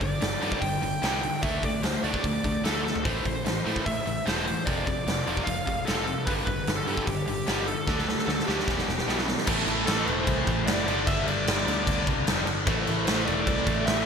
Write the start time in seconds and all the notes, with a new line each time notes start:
0.00 G1 G2 D3 D5, kick, open hi-hat
0.20 G1 G2 D3, snare, open hi-hat
0.41 G2 D3 G3, open hi-hat
0.52 kick
0.61 G1 G2 D3 G5, kick, open hi-hat
0.82 G1 G2 D3, open hi-hat
1.02 C2 G2 D3 G3, snare, open hi-hat
1.22 G2 D3, open hi-hat
1.43 D2 D3 A3 D4 E5, kick, open hi-hat
1.63 D3 A3 D5, kick, open hi-hat
1.83 D2 D3 A3 C5, snare, open hi-hat
2.03 D2 D3 A3 D4 D5, open hi-hat
2.14 kick
2.24 D2 D3 A3, kick, open hi-hat
2.44 D2 D3 A3, kick, open hi-hat
2.64 D2 D3 A3 D4 A4, snare, open hi-hat
2.84 D3 A3 A4, snare
2.96 floor tom
3.03 A1 A2 E3 A3 C5, kick, open hi-hat
3.24 A1 A2 E3 C5, kick, open hi-hat
3.44 A1 A2 E3, snare, open hi-hat
3.65 A2 E3 A3, open hi-hat
3.76 kick
3.85 A1 A2 E3 E5, kick, open hi-hat
4.06 A1 A2 E3, open hi-hat
4.26 E1 A2 E3 A3 C5, snare, open hi-hat
4.46 A2 E3 C5, open hi-hat
4.66 F1 F2 C3 F3 D5, kick, open hi-hat
4.85 F2 C3 D5, kick, open hi-hat
5.07 F1 F2 C3, snare, open hi-hat
5.26 F1 F2 C3 F3, open hi-hat
5.37 kick
5.45 F1 F2 C3 F5, kick, open hi-hat
5.66 F1 F2 C3, kick, open hi-hat
5.85 F1 F2 C3 F3 A4, snare, open hi-hat
6.04 F2 C3 A4, open hi-hat
6.26 G1 G2 D3 G3 B4, kick, open hi-hat
6.46 G1 G2 D3 B4, kick, open hi-hat
6.67 G1 G2 D3, snare, open hi-hat
6.76 A4
6.86 G2 D3 G3, open hi-hat
6.97 kick
7.06 G1 G2 D3 G4, kick, open hi-hat
7.26 G1 G2 D3 G4, open hi-hat
7.46 G1 G2 D3 G3, snare, open hi-hat
7.67 G2 D3 A4, open hi-hat
7.87 D2 D3 A3 D4, kick, snare
7.98 snare
8.09 D3 A3, snare
8.19 snare
8.26 D2 D3 A3 A4, snare
8.35 A4
8.39 snare
8.46 D2 D3 A3 D4 G4, snare
8.59 snare
8.68 E1 E2 B2 E3, kick, snare
8.79 snare
8.88 E1 E2 B2, snare
8.98 snare
9.08 B1 E2 B2 E3, snare
9.18 snare
9.28 E2 B2, snare
9.38 snare
9.46 A1 A2 E3 A3, kick, crash
9.68 A1, crash
9.87 A1 A4, snare, crash
10.06 E1 C5, crash
10.27 C2, kick, crash
10.47 A1, kick, crash
10.66 F#1 D5, snare, crash
10.86 G1 G2 D3 G3, crash
11.06 G1 E5, kick, crash
11.27 G1 D5, crash
11.47 G1, snare, crash
11.67 D2, crash
11.87 D2, kick, crash
12.07 C2, kick, crash
12.27 F1, snare, crash
12.47 G1, crash
12.67 A1 A2 E3 A3, kick, crash
12.87 A1, crash
13.06 A1 C5, snare, crash
13.26 E1 D5, crash
13.47 C2, kick, crash
13.67 A1, kick, crash
13.86 A1 E5, snare, crash